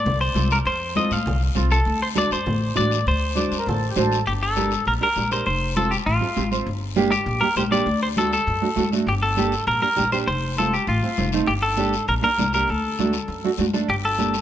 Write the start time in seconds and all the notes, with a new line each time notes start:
Already playing: D5
0.06 C2, high conga, low conga, long guiro
0.21 C5
0.35 C2 C4 F4 A4, high conga, short guiro
0.50 A#4, short guiro
0.65 F2 C5, high conga, long guiro
0.96 C4 F4 A4 D#5, high conga, short guiro
1.11 A2 F5, short guiro
1.26 C2, high conga, low conga, long guiro
1.55 C2 C4 F4 A4, high conga, short guiro
1.70 A4, short guiro
1.85 D2, high conga, long guiro
2.02 C5
2.15 D4 F#4 A4 D5, high conga, short guiro
2.31 F#2 C5, short guiro
2.46 A1, high conga, low conga, long guiro
2.75 A1 D4 F#4 A4 D5, high conga, short guiro
2.91 short guiro
3.06 D2 C5, high conga, long guiro
3.35 D4 F#4 A4 D5, high conga, short guiro
3.52 F#2, short guiro
3.59 A#4
3.66 A1 A4, high conga, low conga, long guiro
3.90 G4
3.96 A1 D4 F#4 A4 C5, high conga, short guiro
4.12 short guiro
4.26 G1 G4, high conga, long guiro
4.43 A4
4.56 D4 G4 A#4, high conga, short guiro
4.71 short guiro
4.85 A#1 A#4, high conga, long guiro
5.01 D4 G4 A#4
5.16 A#1 D4 G4 A#4, high conga, short guiro
5.31 D4 G4 A#4 C5, short guiro
5.46 F1 C5, high conga, long guiro
5.76 C4 F4 A4, high conga, short guiro
5.91 G4, short guiro
6.06 A1 F4, high conga, long guiro
6.21 C4 F4 A4
6.36 A1 C4 F4 G4, high conga, short guiro
6.51 C4 F4 C5, short guiro
6.66 G1, high conga, long guiro
6.96 A#3 D4 G4, high conga, short guiro
7.11 G4, short guiro
7.26 A#1, high conga, long guiro
7.41 A#3 D4 G4 A#4
7.56 A#1 A#3 D4 G4 C5, high conga, short guiro
7.71 A#3 D4 G4 D5, short guiro
7.86 D2, high conga, long guiro
8.03 C5
8.16 A3 D4 F#4 A4, high conga, short guiro
8.32 A4, short guiro
8.47 F#2, high conga, long guiro
8.62 A3 D4 F#4
8.76 F#2 A3 D4 F#4, high conga, short guiro
8.92 A3 D4 F#4, short guiro
9.07 G1 G4, high conga, long guiro
9.23 A4
9.36 A#3 D4 G4, high conga, short guiro
9.52 short guiro
9.67 A#1 A#4, high conga, long guiro
9.81 A#3 D4 G4 A#4
9.96 A#1 A#3 D4 G4, high conga, short guiro
10.12 A#3 D4 G4 C5, short guiro
10.27 F1 C5, high conga, long guiro
10.58 A3 C4 F4 A4, high conga, short guiro
10.74 G4, short guiro
10.87 A1 F4, high conga, long guiro
11.03 A3 C4 F4
11.17 F1 A3 C4 F4, high conga, short guiro
11.32 A3 C4 D#4, short guiro
11.46 G1 G4, high conga, long guiro
11.62 A4
11.76 A#3 D4 G4, high conga, short guiro
11.93 short guiro
12.08 A#1 A#4, high conga, long guiro
12.22 A#3 D4 A#4
12.38 C2 A#3 D4 A4, high conga, short guiro
12.53 A#3 D4 G4 A#4, short guiro
12.68 D2 A4, high conga, long guiro
12.98 A3 D4 F#4, high conga, short guiro
13.13 short guiro
13.28 F#2, high conga, long guiro
13.44 A3 D4 F#4
13.58 F#2 A3 D4 F#4, high conga, short guiro
13.73 A3 D4 A4, short guiro
13.89 G1 G4, high conga, long guiro
14.05 A4
14.18 A#3 D4 G4, high conga, short guiro
14.34 short guiro